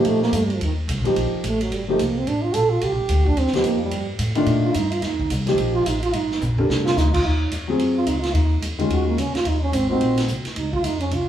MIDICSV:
0, 0, Header, 1, 6, 480
1, 0, Start_track
1, 0, Tempo, 276498
1, 1059, Time_signature, 4, 2, 24, 8
1, 19592, End_track
2, 0, Start_track
2, 0, Title_t, "Trombone"
2, 0, Program_c, 0, 57
2, 113, Note_on_c, 0, 57, 80
2, 375, Note_off_c, 0, 57, 0
2, 385, Note_on_c, 0, 58, 93
2, 597, Note_on_c, 0, 57, 79
2, 623, Note_off_c, 0, 58, 0
2, 782, Note_on_c, 0, 55, 67
2, 808, Note_off_c, 0, 57, 0
2, 944, Note_on_c, 0, 53, 65
2, 970, Note_off_c, 0, 55, 0
2, 1082, Note_off_c, 0, 53, 0
2, 1103, Note_on_c, 0, 51, 68
2, 1265, Note_off_c, 0, 51, 0
2, 2548, Note_on_c, 0, 57, 73
2, 2808, Note_on_c, 0, 54, 81
2, 2834, Note_off_c, 0, 57, 0
2, 3014, Note_on_c, 0, 55, 73
2, 3040, Note_off_c, 0, 54, 0
2, 3263, Note_off_c, 0, 55, 0
2, 3274, Note_on_c, 0, 57, 80
2, 3480, Note_on_c, 0, 58, 71
2, 3506, Note_off_c, 0, 57, 0
2, 3777, Note_on_c, 0, 60, 77
2, 3803, Note_off_c, 0, 58, 0
2, 3957, Note_on_c, 0, 62, 84
2, 3983, Note_off_c, 0, 60, 0
2, 4203, Note_on_c, 0, 65, 97
2, 4229, Note_off_c, 0, 62, 0
2, 4422, Note_on_c, 0, 69, 95
2, 4448, Note_off_c, 0, 65, 0
2, 4685, Note_on_c, 0, 65, 87
2, 4711, Note_off_c, 0, 69, 0
2, 4932, Note_on_c, 0, 67, 84
2, 4958, Note_off_c, 0, 65, 0
2, 5670, Note_on_c, 0, 62, 89
2, 5696, Note_off_c, 0, 67, 0
2, 5892, Note_on_c, 0, 60, 86
2, 5919, Note_off_c, 0, 62, 0
2, 6152, Note_on_c, 0, 59, 81
2, 6178, Note_off_c, 0, 60, 0
2, 6365, Note_on_c, 0, 58, 78
2, 6391, Note_off_c, 0, 59, 0
2, 6613, Note_off_c, 0, 58, 0
2, 6624, Note_on_c, 0, 55, 87
2, 7073, Note_off_c, 0, 55, 0
2, 8043, Note_on_c, 0, 65, 93
2, 8253, Note_on_c, 0, 63, 89
2, 8279, Note_off_c, 0, 65, 0
2, 8525, Note_on_c, 0, 65, 92
2, 8551, Note_off_c, 0, 63, 0
2, 8760, Note_on_c, 0, 63, 81
2, 8786, Note_off_c, 0, 65, 0
2, 9229, Note_off_c, 0, 63, 0
2, 9972, Note_on_c, 0, 65, 102
2, 10202, Note_on_c, 0, 63, 83
2, 10228, Note_off_c, 0, 65, 0
2, 10446, Note_off_c, 0, 63, 0
2, 10456, Note_on_c, 0, 65, 105
2, 10674, Note_on_c, 0, 63, 85
2, 10700, Note_off_c, 0, 65, 0
2, 11144, Note_off_c, 0, 63, 0
2, 11902, Note_on_c, 0, 65, 109
2, 12112, Note_on_c, 0, 63, 94
2, 12138, Note_off_c, 0, 65, 0
2, 12358, Note_off_c, 0, 63, 0
2, 12368, Note_on_c, 0, 65, 102
2, 12587, Note_on_c, 0, 63, 77
2, 12613, Note_off_c, 0, 65, 0
2, 13060, Note_off_c, 0, 63, 0
2, 13832, Note_on_c, 0, 65, 95
2, 14018, Note_on_c, 0, 63, 81
2, 14044, Note_off_c, 0, 65, 0
2, 14239, Note_off_c, 0, 63, 0
2, 14249, Note_on_c, 0, 65, 93
2, 14482, Note_on_c, 0, 63, 76
2, 14508, Note_off_c, 0, 65, 0
2, 14968, Note_off_c, 0, 63, 0
2, 15477, Note_on_c, 0, 66, 87
2, 15738, Note_off_c, 0, 66, 0
2, 15752, Note_on_c, 0, 58, 71
2, 15958, Note_on_c, 0, 61, 79
2, 15984, Note_off_c, 0, 58, 0
2, 16220, Note_off_c, 0, 61, 0
2, 16231, Note_on_c, 0, 65, 93
2, 16448, Note_on_c, 0, 63, 80
2, 16474, Note_off_c, 0, 65, 0
2, 16683, Note_off_c, 0, 63, 0
2, 16694, Note_on_c, 0, 61, 96
2, 16906, Note_on_c, 0, 60, 85
2, 16932, Note_off_c, 0, 61, 0
2, 17171, Note_off_c, 0, 60, 0
2, 17181, Note_on_c, 0, 60, 89
2, 17807, Note_off_c, 0, 60, 0
2, 18353, Note_on_c, 0, 63, 72
2, 18613, Note_off_c, 0, 63, 0
2, 18623, Note_on_c, 0, 65, 100
2, 18844, Note_on_c, 0, 63, 83
2, 18870, Note_off_c, 0, 65, 0
2, 19099, Note_off_c, 0, 63, 0
2, 19109, Note_on_c, 0, 61, 84
2, 19328, Note_on_c, 0, 65, 85
2, 19354, Note_off_c, 0, 61, 0
2, 19592, Note_off_c, 0, 65, 0
2, 19592, End_track
3, 0, Start_track
3, 0, Title_t, "Grand piano"
3, 0, Program_c, 1, 0
3, 0, Note_on_c, 1, 53, 73
3, 0, Note_on_c, 1, 58, 68
3, 0, Note_on_c, 1, 63, 67
3, 0, Note_on_c, 1, 67, 76
3, 535, Note_off_c, 1, 53, 0
3, 539, Note_off_c, 1, 58, 0
3, 541, Note_off_c, 1, 63, 0
3, 547, Note_off_c, 1, 67, 0
3, 1807, Note_on_c, 1, 53, 74
3, 1823, Note_on_c, 1, 58, 72
3, 1835, Note_on_c, 1, 63, 66
3, 1848, Note_on_c, 1, 67, 77
3, 2450, Note_off_c, 1, 53, 0
3, 2458, Note_off_c, 1, 58, 0
3, 2464, Note_off_c, 1, 63, 0
3, 2471, Note_off_c, 1, 67, 0
3, 3269, Note_on_c, 1, 53, 77
3, 3287, Note_on_c, 1, 58, 65
3, 3296, Note_on_c, 1, 63, 70
3, 3298, Note_on_c, 1, 67, 78
3, 3440, Note_off_c, 1, 53, 0
3, 3449, Note_off_c, 1, 58, 0
3, 3454, Note_off_c, 1, 63, 0
3, 3455, Note_off_c, 1, 67, 0
3, 6130, Note_on_c, 1, 53, 68
3, 6147, Note_on_c, 1, 58, 64
3, 6157, Note_on_c, 1, 63, 64
3, 6170, Note_on_c, 1, 67, 74
3, 6771, Note_off_c, 1, 53, 0
3, 6780, Note_off_c, 1, 58, 0
3, 6784, Note_off_c, 1, 63, 0
3, 6791, Note_off_c, 1, 67, 0
3, 7560, Note_on_c, 1, 51, 83
3, 7565, Note_on_c, 1, 57, 72
3, 7578, Note_on_c, 1, 62, 79
3, 7590, Note_on_c, 1, 65, 85
3, 8205, Note_off_c, 1, 51, 0
3, 8208, Note_off_c, 1, 57, 0
3, 8215, Note_off_c, 1, 62, 0
3, 8220, Note_off_c, 1, 65, 0
3, 9485, Note_on_c, 1, 53, 69
3, 9492, Note_on_c, 1, 58, 66
3, 9512, Note_on_c, 1, 63, 65
3, 9522, Note_on_c, 1, 67, 81
3, 10127, Note_off_c, 1, 53, 0
3, 10130, Note_off_c, 1, 58, 0
3, 10140, Note_off_c, 1, 63, 0
3, 10145, Note_off_c, 1, 67, 0
3, 11430, Note_on_c, 1, 69, 69
3, 11442, Note_on_c, 1, 62, 62
3, 11453, Note_on_c, 1, 67, 60
3, 11455, Note_on_c, 1, 70, 78
3, 12059, Note_off_c, 1, 69, 0
3, 12064, Note_off_c, 1, 62, 0
3, 12070, Note_off_c, 1, 67, 0
3, 12071, Note_off_c, 1, 70, 0
3, 13330, Note_on_c, 1, 54, 67
3, 13350, Note_on_c, 1, 60, 64
3, 13356, Note_on_c, 1, 65, 64
3, 13366, Note_on_c, 1, 68, 74
3, 13969, Note_off_c, 1, 54, 0
3, 13979, Note_off_c, 1, 60, 0
3, 13982, Note_off_c, 1, 65, 0
3, 13987, Note_off_c, 1, 68, 0
3, 15251, Note_on_c, 1, 51, 76
3, 15271, Note_on_c, 1, 56, 65
3, 15286, Note_on_c, 1, 61, 66
3, 15286, Note_on_c, 1, 65, 78
3, 15890, Note_off_c, 1, 51, 0
3, 15901, Note_off_c, 1, 56, 0
3, 15908, Note_off_c, 1, 61, 0
3, 15908, Note_off_c, 1, 65, 0
3, 17176, Note_on_c, 1, 65, 69
3, 17193, Note_on_c, 1, 58, 63
3, 17194, Note_on_c, 1, 63, 66
3, 17211, Note_on_c, 1, 66, 76
3, 17814, Note_off_c, 1, 65, 0
3, 17823, Note_off_c, 1, 58, 0
3, 17823, Note_off_c, 1, 63, 0
3, 17832, Note_off_c, 1, 66, 0
3, 19592, End_track
4, 0, Start_track
4, 0, Title_t, "Upright bass"
4, 0, Program_c, 2, 32
4, 85, Note_on_c, 2, 46, 77
4, 550, Note_off_c, 2, 46, 0
4, 560, Note_on_c, 2, 43, 82
4, 1035, Note_off_c, 2, 43, 0
4, 1061, Note_on_c, 2, 39, 87
4, 1512, Note_off_c, 2, 39, 0
4, 1523, Note_on_c, 2, 36, 94
4, 1689, Note_off_c, 2, 36, 0
4, 1689, Note_on_c, 2, 34, 60
4, 1843, Note_off_c, 2, 34, 0
4, 1854, Note_on_c, 2, 31, 62
4, 2005, Note_off_c, 2, 31, 0
4, 2012, Note_on_c, 2, 34, 81
4, 2287, Note_off_c, 2, 34, 0
4, 2490, Note_on_c, 2, 33, 88
4, 2954, Note_off_c, 2, 33, 0
4, 2965, Note_on_c, 2, 31, 81
4, 3438, Note_off_c, 2, 31, 0
4, 3459, Note_on_c, 2, 36, 89
4, 3925, Note_off_c, 2, 36, 0
4, 3934, Note_on_c, 2, 33, 80
4, 4403, Note_off_c, 2, 33, 0
4, 4414, Note_on_c, 2, 34, 77
4, 4882, Note_off_c, 2, 34, 0
4, 4895, Note_on_c, 2, 36, 82
4, 5060, Note_off_c, 2, 36, 0
4, 5060, Note_on_c, 2, 34, 53
4, 5204, Note_off_c, 2, 34, 0
4, 5215, Note_on_c, 2, 31, 60
4, 5354, Note_off_c, 2, 31, 0
4, 5364, Note_on_c, 2, 38, 87
4, 5832, Note_off_c, 2, 38, 0
4, 5842, Note_on_c, 2, 39, 82
4, 6121, Note_off_c, 2, 39, 0
4, 6321, Note_on_c, 2, 41, 78
4, 6795, Note_off_c, 2, 41, 0
4, 6802, Note_on_c, 2, 43, 84
4, 7259, Note_off_c, 2, 43, 0
4, 7269, Note_on_c, 2, 45, 90
4, 7738, Note_off_c, 2, 45, 0
4, 7749, Note_on_c, 2, 46, 85
4, 8228, Note_off_c, 2, 46, 0
4, 8245, Note_on_c, 2, 43, 86
4, 8707, Note_off_c, 2, 43, 0
4, 8717, Note_on_c, 2, 39, 85
4, 9192, Note_off_c, 2, 39, 0
4, 9202, Note_on_c, 2, 36, 92
4, 9670, Note_off_c, 2, 36, 0
4, 9680, Note_on_c, 2, 34, 84
4, 10153, Note_off_c, 2, 34, 0
4, 10169, Note_on_c, 2, 33, 89
4, 10638, Note_off_c, 2, 33, 0
4, 10653, Note_on_c, 2, 31, 88
4, 11115, Note_off_c, 2, 31, 0
4, 11125, Note_on_c, 2, 34, 94
4, 11595, Note_off_c, 2, 34, 0
4, 11611, Note_on_c, 2, 36, 87
4, 12078, Note_off_c, 2, 36, 0
4, 12093, Note_on_c, 2, 38, 95
4, 12559, Note_off_c, 2, 38, 0
4, 12577, Note_on_c, 2, 39, 76
4, 13035, Note_off_c, 2, 39, 0
4, 13046, Note_on_c, 2, 41, 81
4, 13503, Note_off_c, 2, 41, 0
4, 13513, Note_on_c, 2, 42, 75
4, 13989, Note_off_c, 2, 42, 0
4, 14001, Note_on_c, 2, 37, 79
4, 14460, Note_off_c, 2, 37, 0
4, 14471, Note_on_c, 2, 39, 83
4, 14948, Note_off_c, 2, 39, 0
4, 14962, Note_on_c, 2, 41, 84
4, 15434, Note_off_c, 2, 41, 0
4, 15442, Note_on_c, 2, 39, 80
4, 15915, Note_off_c, 2, 39, 0
4, 15922, Note_on_c, 2, 37, 87
4, 16200, Note_off_c, 2, 37, 0
4, 16403, Note_on_c, 2, 39, 89
4, 16870, Note_off_c, 2, 39, 0
4, 16880, Note_on_c, 2, 32, 88
4, 17354, Note_off_c, 2, 32, 0
4, 17371, Note_on_c, 2, 34, 80
4, 17840, Note_off_c, 2, 34, 0
4, 17852, Note_on_c, 2, 36, 82
4, 18127, Note_off_c, 2, 36, 0
4, 18335, Note_on_c, 2, 37, 84
4, 18803, Note_off_c, 2, 37, 0
4, 18822, Note_on_c, 2, 41, 87
4, 19276, Note_off_c, 2, 41, 0
4, 19286, Note_on_c, 2, 36, 83
4, 19592, Note_off_c, 2, 36, 0
4, 19592, End_track
5, 0, Start_track
5, 0, Title_t, "Muted upright bass strokes"
5, 6144, Note_on_c, 9, 29, 37
5, 6318, Note_off_c, 9, 29, 0
5, 16219, Note_on_c, 9, 29, 41
5, 16393, Note_off_c, 9, 29, 0
5, 18151, Note_on_c, 9, 29, 38
5, 18325, Note_off_c, 9, 29, 0
5, 19592, End_track
6, 0, Start_track
6, 0, Title_t, "Drums"
6, 80, Note_on_c, 9, 51, 59
6, 254, Note_off_c, 9, 51, 0
6, 387, Note_on_c, 9, 38, 34
6, 561, Note_off_c, 9, 38, 0
6, 568, Note_on_c, 9, 44, 64
6, 568, Note_on_c, 9, 51, 67
6, 742, Note_off_c, 9, 44, 0
6, 742, Note_off_c, 9, 51, 0
6, 866, Note_on_c, 9, 51, 43
6, 1040, Note_off_c, 9, 51, 0
6, 1058, Note_on_c, 9, 51, 59
6, 1232, Note_off_c, 9, 51, 0
6, 1541, Note_on_c, 9, 44, 55
6, 1541, Note_on_c, 9, 51, 73
6, 1714, Note_off_c, 9, 44, 0
6, 1714, Note_off_c, 9, 51, 0
6, 1826, Note_on_c, 9, 51, 47
6, 2000, Note_off_c, 9, 51, 0
6, 2018, Note_on_c, 9, 51, 61
6, 2192, Note_off_c, 9, 51, 0
6, 2495, Note_on_c, 9, 44, 55
6, 2495, Note_on_c, 9, 51, 66
6, 2669, Note_off_c, 9, 44, 0
6, 2669, Note_off_c, 9, 51, 0
6, 2790, Note_on_c, 9, 51, 49
6, 2964, Note_off_c, 9, 51, 0
6, 2982, Note_on_c, 9, 51, 62
6, 3156, Note_off_c, 9, 51, 0
6, 3458, Note_on_c, 9, 44, 57
6, 3458, Note_on_c, 9, 51, 67
6, 3632, Note_off_c, 9, 44, 0
6, 3632, Note_off_c, 9, 51, 0
6, 3940, Note_on_c, 9, 51, 59
6, 4113, Note_off_c, 9, 51, 0
6, 4404, Note_on_c, 9, 44, 57
6, 4404, Note_on_c, 9, 51, 71
6, 4577, Note_off_c, 9, 44, 0
6, 4577, Note_off_c, 9, 51, 0
6, 4885, Note_on_c, 9, 51, 59
6, 5059, Note_off_c, 9, 51, 0
6, 5359, Note_on_c, 9, 44, 53
6, 5359, Note_on_c, 9, 51, 75
6, 5532, Note_off_c, 9, 44, 0
6, 5532, Note_off_c, 9, 51, 0
6, 5668, Note_on_c, 9, 36, 56
6, 5842, Note_off_c, 9, 36, 0
6, 5847, Note_on_c, 9, 51, 57
6, 6018, Note_on_c, 9, 38, 27
6, 6020, Note_off_c, 9, 51, 0
6, 6136, Note_on_c, 9, 51, 45
6, 6163, Note_off_c, 9, 38, 0
6, 6163, Note_on_c, 9, 38, 45
6, 6309, Note_off_c, 9, 51, 0
6, 6314, Note_on_c, 9, 44, 53
6, 6314, Note_on_c, 9, 51, 65
6, 6337, Note_off_c, 9, 38, 0
6, 6487, Note_off_c, 9, 44, 0
6, 6487, Note_off_c, 9, 51, 0
6, 6793, Note_on_c, 9, 51, 68
6, 6967, Note_off_c, 9, 51, 0
6, 7270, Note_on_c, 9, 44, 54
6, 7270, Note_on_c, 9, 51, 78
6, 7443, Note_off_c, 9, 44, 0
6, 7443, Note_off_c, 9, 51, 0
6, 7556, Note_on_c, 9, 51, 49
6, 7729, Note_off_c, 9, 51, 0
6, 7749, Note_on_c, 9, 51, 58
6, 7923, Note_off_c, 9, 51, 0
6, 8235, Note_on_c, 9, 44, 65
6, 8235, Note_on_c, 9, 51, 72
6, 8408, Note_off_c, 9, 44, 0
6, 8408, Note_off_c, 9, 51, 0
6, 8534, Note_on_c, 9, 51, 50
6, 8708, Note_off_c, 9, 51, 0
6, 8714, Note_on_c, 9, 51, 61
6, 8723, Note_on_c, 9, 38, 39
6, 8888, Note_off_c, 9, 51, 0
6, 8897, Note_off_c, 9, 38, 0
6, 9018, Note_on_c, 9, 36, 58
6, 9192, Note_off_c, 9, 36, 0
6, 9204, Note_on_c, 9, 44, 60
6, 9204, Note_on_c, 9, 51, 72
6, 9378, Note_off_c, 9, 44, 0
6, 9378, Note_off_c, 9, 51, 0
6, 9491, Note_on_c, 9, 51, 51
6, 9500, Note_on_c, 9, 38, 35
6, 9664, Note_off_c, 9, 51, 0
6, 9673, Note_off_c, 9, 38, 0
6, 9682, Note_on_c, 9, 51, 64
6, 9856, Note_off_c, 9, 51, 0
6, 10173, Note_on_c, 9, 44, 56
6, 10173, Note_on_c, 9, 51, 70
6, 10347, Note_off_c, 9, 44, 0
6, 10347, Note_off_c, 9, 51, 0
6, 10462, Note_on_c, 9, 51, 49
6, 10635, Note_off_c, 9, 51, 0
6, 10648, Note_on_c, 9, 51, 65
6, 10822, Note_off_c, 9, 51, 0
6, 10959, Note_on_c, 9, 38, 39
6, 11131, Note_on_c, 9, 44, 60
6, 11132, Note_off_c, 9, 38, 0
6, 11140, Note_on_c, 9, 43, 57
6, 11305, Note_off_c, 9, 44, 0
6, 11314, Note_off_c, 9, 43, 0
6, 11424, Note_on_c, 9, 43, 62
6, 11597, Note_off_c, 9, 43, 0
6, 11630, Note_on_c, 9, 38, 79
6, 11803, Note_off_c, 9, 38, 0
6, 11916, Note_on_c, 9, 38, 79
6, 12090, Note_off_c, 9, 38, 0
6, 12098, Note_on_c, 9, 44, 67
6, 12106, Note_on_c, 9, 38, 53
6, 12271, Note_off_c, 9, 44, 0
6, 12280, Note_off_c, 9, 38, 0
6, 12393, Note_on_c, 9, 36, 80
6, 12400, Note_on_c, 9, 49, 84
6, 12567, Note_off_c, 9, 36, 0
6, 12573, Note_off_c, 9, 49, 0
6, 13047, Note_on_c, 9, 44, 50
6, 13047, Note_on_c, 9, 51, 65
6, 13220, Note_off_c, 9, 44, 0
6, 13220, Note_off_c, 9, 51, 0
6, 13531, Note_on_c, 9, 51, 55
6, 13705, Note_off_c, 9, 51, 0
6, 14002, Note_on_c, 9, 44, 51
6, 14002, Note_on_c, 9, 51, 63
6, 14176, Note_off_c, 9, 44, 0
6, 14176, Note_off_c, 9, 51, 0
6, 14295, Note_on_c, 9, 51, 44
6, 14304, Note_on_c, 9, 38, 49
6, 14469, Note_off_c, 9, 51, 0
6, 14478, Note_off_c, 9, 38, 0
6, 14490, Note_on_c, 9, 51, 59
6, 14664, Note_off_c, 9, 51, 0
6, 14970, Note_on_c, 9, 44, 56
6, 14970, Note_on_c, 9, 51, 71
6, 15144, Note_off_c, 9, 44, 0
6, 15144, Note_off_c, 9, 51, 0
6, 15266, Note_on_c, 9, 51, 45
6, 15440, Note_off_c, 9, 51, 0
6, 15457, Note_on_c, 9, 51, 58
6, 15630, Note_off_c, 9, 51, 0
6, 15940, Note_on_c, 9, 44, 51
6, 15940, Note_on_c, 9, 51, 66
6, 16113, Note_off_c, 9, 44, 0
6, 16113, Note_off_c, 9, 51, 0
6, 16228, Note_on_c, 9, 51, 45
6, 16236, Note_on_c, 9, 38, 57
6, 16401, Note_off_c, 9, 51, 0
6, 16408, Note_on_c, 9, 51, 61
6, 16410, Note_off_c, 9, 38, 0
6, 16582, Note_off_c, 9, 51, 0
6, 16894, Note_on_c, 9, 44, 59
6, 16894, Note_on_c, 9, 51, 71
6, 17067, Note_off_c, 9, 44, 0
6, 17067, Note_off_c, 9, 51, 0
6, 17373, Note_on_c, 9, 51, 59
6, 17546, Note_off_c, 9, 51, 0
6, 17664, Note_on_c, 9, 51, 65
6, 17673, Note_on_c, 9, 38, 52
6, 17838, Note_off_c, 9, 51, 0
6, 17846, Note_off_c, 9, 38, 0
6, 17847, Note_on_c, 9, 44, 61
6, 18021, Note_off_c, 9, 44, 0
6, 18140, Note_on_c, 9, 51, 48
6, 18148, Note_on_c, 9, 38, 35
6, 18313, Note_off_c, 9, 51, 0
6, 18322, Note_off_c, 9, 38, 0
6, 18333, Note_on_c, 9, 51, 61
6, 18506, Note_off_c, 9, 51, 0
6, 18633, Note_on_c, 9, 36, 53
6, 18807, Note_off_c, 9, 36, 0
6, 18816, Note_on_c, 9, 44, 60
6, 18816, Note_on_c, 9, 51, 66
6, 18990, Note_off_c, 9, 44, 0
6, 18990, Note_off_c, 9, 51, 0
6, 19103, Note_on_c, 9, 51, 44
6, 19277, Note_off_c, 9, 51, 0
6, 19293, Note_on_c, 9, 51, 59
6, 19467, Note_off_c, 9, 51, 0
6, 19592, End_track
0, 0, End_of_file